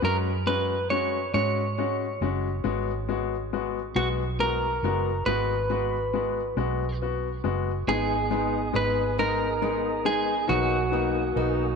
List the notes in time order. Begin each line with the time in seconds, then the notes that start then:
0.02 F#2 G#3 C#4 F#4 A#4
0.46 G#3 C#4 F#4 B4
0.90 G#3 C#4 F#4 C#5
1.34 G#2 G#3 C#4 F#4 C#5
1.78 G#3 C#4 F#4
2.21 F#1 G#3 C#4 F#4
2.64 G#1 G#3 B3 F#4
3.09 G#3 B3 F#4
3.53 G#3 B3 F#4
3.95 B1 G#3 B3 F#4
4.39 G#3 B3 F#4 A#4
4.83 F#1 G#3 B3 F#4
5.26 G#1 G#3 B3 F#4 B4
5.70 G#3 B3 F#4
6.13 G#3 B3 F#4
6.57 B1 G#3 B3 F#4
7.02 B3 F#4
7.44 F#1 G#3 B3 F#4
7.87 G#1 G#3 B3 D#4 G#4 D#5 G#5 D#6
8.31 G#3 B3 D#4
8.73 G#1 G#3 B3 D#4 G#4 B4
9.19 G#3 B3 D#4 A#4
9.62 G#3 B3 D#4
10.05 G#3 B3 D#4 G#4
10.47 B1 F#3 A#3 B3 D#4 F#4 A#4 F#5
10.91 A#3 B3 D#4
11.35 B1 A#3 B3 D#4